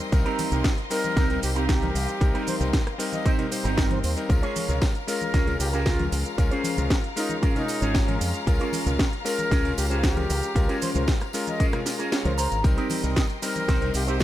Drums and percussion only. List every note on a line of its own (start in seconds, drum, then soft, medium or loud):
0.12 kick loud
0.12 closed hi-hat medium
0.12 tambourine medium
0.12 shaker soft
0.26 closed hi-hat soft
0.26 tambourine soft
0.39 open hi-hat loud
0.39 tambourine loud
0.39 high conga loud
0.39 shaker medium
0.52 closed hi-hat soft
0.52 tambourine soft
0.52 low conga loud
0.52 shaker soft
0.64 kick loud
0.64 snare loud
0.64 closed hi-hat medium
0.64 tambourine soft
0.64 shaker soft
0.78 closed hi-hat soft
0.91 open hi-hat loud
0.91 tambourine medium
0.91 shaker medium
1.04 closed hi-hat soft
1.04 tambourine soft
1.04 high conga medium
1.04 shaker soft
1.16 kick loud
1.16 snare medium
1.16 closed hi-hat medium
1.16 tambourine medium
1.16 shaker soft
1.30 closed hi-hat soft
1.30 tambourine soft
1.30 low conga medium
1.43 open hi-hat loud
1.43 tambourine loud
1.43 shaker medium
1.56 closed hi-hat soft
1.56 tambourine soft
1.56 shaker soft
1.69 kick loud
1.69 snare loud
1.69 closed hi-hat medium
1.69 tambourine medium
1.69 shaker soft
1.83 closed hi-hat soft
1.83 tambourine soft
1.83 high conga medium
1.96 open hi-hat loud
1.96 tambourine medium
1.96 shaker medium
2.08 closed hi-hat soft
2.08 tambourine soft
2.08 shaker soft
2.21 kick loud
2.21 closed hi-hat medium
2.21 tambourine soft
2.21 shaker soft
2.35 closed hi-hat soft
2.35 tambourine soft
2.47 open hi-hat loud
2.47 tambourine medium
2.47 high conga medium
2.47 shaker medium
2.61 closed hi-hat soft
2.61 tambourine soft
2.61 low conga medium
2.61 shaker soft
2.73 kick loud
2.73 snare loud
2.73 closed hi-hat medium
2.73 tambourine soft
2.73 shaker soft
2.87 cross-stick medium
2.87 closed hi-hat soft
3.00 open hi-hat loud
3.00 tambourine medium
3.00 shaker medium
3.13 tambourine soft
3.13 high conga medium
3.13 shaker soft
3.25 kick loud
3.25 closed hi-hat medium
3.25 tambourine soft
3.25 shaker soft
3.39 closed hi-hat soft
3.39 tambourine soft
3.39 low conga medium
3.52 open hi-hat loud
3.52 tambourine medium
3.52 shaker medium
3.65 closed hi-hat soft
3.65 tambourine soft
3.65 shaker soft
3.78 kick loud
3.78 snare loud
3.78 closed hi-hat medium
3.78 tambourine medium
3.78 shaker soft
3.90 closed hi-hat soft
3.90 tambourine soft
3.90 high conga loud
4.04 open hi-hat loud
4.04 tambourine medium
4.04 shaker medium
4.17 closed hi-hat soft
4.17 tambourine soft
4.17 shaker soft
4.30 kick loud
4.30 closed hi-hat medium
4.30 tambourine medium
4.30 shaker soft
4.43 closed hi-hat soft
4.43 tambourine soft
4.56 open hi-hat loud
4.56 tambourine medium
4.56 high conga medium
4.56 shaker medium
4.69 closed hi-hat soft
4.69 tambourine soft
4.69 low conga medium
4.69 shaker soft
4.82 kick loud
4.82 snare loud
4.82 closed hi-hat medium
4.82 tambourine medium
4.82 shaker soft
4.95 closed hi-hat soft
5.08 open hi-hat loud
5.08 tambourine medium
5.08 shaker medium
5.21 closed hi-hat soft
5.21 tambourine soft
5.21 high conga medium
5.21 shaker soft
5.34 kick loud
5.34 snare medium
5.34 closed hi-hat medium
5.34 tambourine medium
5.34 shaker soft
5.47 closed hi-hat soft
5.47 tambourine soft
5.47 low conga medium
5.60 open hi-hat loud
5.60 tambourine medium
5.60 shaker medium
5.73 closed hi-hat soft
5.73 tambourine soft
5.73 shaker soft
5.86 kick loud
5.86 snare loud
5.86 closed hi-hat medium
5.86 tambourine soft
5.86 shaker soft
5.99 closed hi-hat soft
5.99 tambourine soft
5.99 high conga medium
6.12 open hi-hat loud
6.12 tambourine medium
6.12 shaker medium
6.25 closed hi-hat soft
6.25 tambourine soft
6.25 shaker soft
6.38 kick loud
6.38 closed hi-hat medium
6.38 tambourine medium
6.38 shaker soft
6.51 closed hi-hat soft
6.51 tambourine soft
6.64 open hi-hat loud
6.64 tambourine medium
6.64 high conga medium
6.64 shaker medium
6.77 closed hi-hat soft
6.77 tambourine soft
6.77 low conga medium
6.77 shaker soft
6.90 kick loud
6.90 snare loud
6.90 closed hi-hat medium
6.90 tambourine medium
6.90 shaker soft
7.04 closed hi-hat soft
7.17 open hi-hat loud
7.17 tambourine medium
7.17 shaker medium
7.29 closed hi-hat soft
7.29 tambourine soft
7.29 high conga medium
7.29 shaker soft
7.43 kick loud
7.43 closed hi-hat medium
7.43 tambourine medium
7.43 shaker soft
7.55 closed hi-hat soft
7.55 tambourine soft
7.55 low conga medium
7.68 open hi-hat loud
7.68 tambourine medium
7.68 shaker medium
7.82 closed hi-hat soft
7.82 tambourine soft
7.82 shaker soft
7.95 kick loud
7.95 snare loud
7.95 closed hi-hat medium
7.95 tambourine medium
7.95 shaker soft
8.08 closed hi-hat soft
8.08 tambourine soft
8.08 high conga medium
8.21 open hi-hat loud
8.21 tambourine loud
8.21 shaker medium
8.34 closed hi-hat soft
8.34 tambourine soft
8.34 shaker soft
8.47 kick loud
8.47 closed hi-hat medium
8.47 tambourine medium
8.47 shaker soft
8.60 closed hi-hat soft
8.60 tambourine soft
8.73 open hi-hat loud
8.73 tambourine medium
8.73 high conga medium
8.73 shaker medium
8.87 tambourine soft
8.87 low conga medium
8.87 shaker soft
8.99 kick loud
8.99 snare loud
8.99 closed hi-hat medium
8.99 tambourine medium
8.99 shaker soft
9.13 closed hi-hat soft
9.26 open hi-hat loud
9.26 tambourine loud
9.26 shaker medium
9.39 closed hi-hat soft
9.39 tambourine soft
9.39 high conga medium
9.39 shaker soft
9.51 kick loud
9.51 snare medium
9.51 closed hi-hat medium
9.51 tambourine medium
9.51 shaker soft
9.65 closed hi-hat soft
9.65 tambourine soft
9.65 low conga medium
9.78 open hi-hat loud
9.78 tambourine loud
9.78 shaker medium
9.90 closed hi-hat soft
9.90 tambourine soft
9.90 shaker soft
10.03 kick loud
10.03 snare loud
10.03 closed hi-hat medium
10.03 tambourine medium
10.03 shaker soft
10.17 closed hi-hat soft
10.17 tambourine soft
10.17 high conga medium
10.30 open hi-hat loud
10.30 tambourine medium
10.30 shaker medium
10.43 closed hi-hat soft
10.43 tambourine soft
10.43 shaker soft
10.56 kick loud
10.56 closed hi-hat medium
10.56 tambourine medium
10.56 shaker soft
10.69 closed hi-hat soft
10.69 tambourine soft
10.82 open hi-hat loud
10.82 tambourine medium
10.82 high conga medium
10.82 shaker medium
10.94 tambourine soft
10.94 low conga loud
10.94 shaker soft
11.07 kick loud
11.07 snare loud
11.07 closed hi-hat medium
11.07 tambourine medium
11.07 shaker soft
11.20 cross-stick medium
11.20 closed hi-hat soft
11.20 tambourine soft
11.33 open hi-hat loud
11.33 tambourine medium
11.33 shaker medium
11.47 closed hi-hat soft
11.47 tambourine soft
11.47 high conga medium
11.47 shaker soft
11.60 kick loud
11.60 closed hi-hat medium
11.60 tambourine medium
11.60 shaker soft
11.73 cross-stick medium
11.73 closed hi-hat soft
11.73 tambourine soft
11.73 low conga medium
11.86 snare medium
11.86 open hi-hat loud
11.86 tambourine loud
11.86 shaker medium
12.00 closed hi-hat soft
12.00 tambourine soft
12.00 shaker soft
12.12 snare loud
12.12 closed hi-hat medium
12.12 tambourine medium
12.12 shaker soft
12.25 closed hi-hat soft
12.25 tambourine soft
12.25 high conga medium
12.38 open hi-hat loud
12.38 tambourine loud
12.38 shaker medium
12.51 closed hi-hat soft
12.51 tambourine soft
12.51 shaker soft
12.64 kick loud
12.64 closed hi-hat medium
12.64 tambourine medium
12.64 shaker soft
12.77 closed hi-hat soft
12.77 tambourine soft
12.90 open hi-hat loud
12.90 ride medium
12.90 tambourine medium
12.90 high conga medium
12.90 shaker medium
13.03 closed hi-hat soft
13.03 tambourine soft
13.03 low conga loud
13.03 shaker soft
13.16 kick loud
13.16 snare loud
13.16 closed hi-hat medium
13.16 tambourine medium
13.16 shaker soft
13.30 closed hi-hat soft
13.42 open hi-hat loud
13.42 ride medium
13.42 tambourine loud
13.42 shaker medium
13.56 closed hi-hat soft
13.56 tambourine soft
13.56 high conga medium
13.56 shaker soft
13.68 kick loud
13.68 snare medium
13.68 closed hi-hat medium
13.68 tambourine medium
13.68 shaker soft
13.81 closed hi-hat soft
13.81 tambourine soft
13.81 low conga medium
13.94 open hi-hat loud
13.94 ride medium
13.94 tambourine medium
13.94 shaker medium
14.07 closed hi-hat soft
14.07 tambourine soft
14.07 shaker soft
14.20 snare loud
14.20 tambourine medium